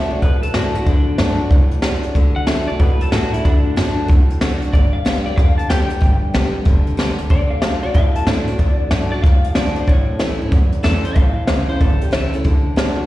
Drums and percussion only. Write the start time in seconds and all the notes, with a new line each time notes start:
0.22 kick, closed hi-hat
0.43 closed hi-hat
0.54 snare, closed hi-hat
0.75 closed hi-hat
0.86 kick, closed hi-hat
1.18 snare, closed hi-hat
1.50 kick, closed hi-hat
1.71 closed hi-hat
1.82 snare, closed hi-hat
2.03 closed hi-hat
2.15 kick, closed hi-hat
2.47 snare, closed hi-hat
2.79 kick, closed hi-hat
3.01 closed hi-hat
3.12 snare, closed hi-hat
3.34 closed hi-hat
3.45 kick, closed hi-hat
3.77 snare, closed hi-hat
4.10 kick, closed hi-hat
4.30 closed hi-hat
4.41 snare, closed hi-hat
4.62 closed hi-hat
4.73 kick, closed hi-hat
5.06 snare, closed hi-hat
5.37 kick, closed hi-hat
5.59 closed hi-hat
5.70 snare, closed hi-hat
5.90 closed hi-hat
6.02 kick, closed hi-hat
6.34 snare, closed hi-hat
6.66 kick, closed hi-hat
6.87 closed hi-hat
6.99 snare, closed hi-hat
7.19 closed hi-hat
7.30 kick, closed hi-hat
7.62 snare, closed hi-hat
7.94 kick, closed hi-hat
8.15 closed hi-hat
8.27 snare, closed hi-hat
8.47 closed hi-hat
8.59 kick, closed hi-hat
8.91 snare, closed hi-hat
9.24 kick, closed hi-hat
9.44 closed hi-hat
9.55 snare, closed hi-hat
9.76 closed hi-hat
9.87 kick, closed hi-hat
10.20 snare, closed hi-hat
10.52 kick, closed hi-hat
10.72 closed hi-hat
10.84 snare, closed hi-hat
11.05 closed hi-hat
11.16 kick, closed hi-hat
11.47 snare, closed hi-hat
11.81 kick, closed hi-hat
12.01 closed hi-hat
12.13 snare, closed hi-hat
12.33 closed hi-hat
12.45 kick, closed hi-hat
12.77 snare, closed hi-hat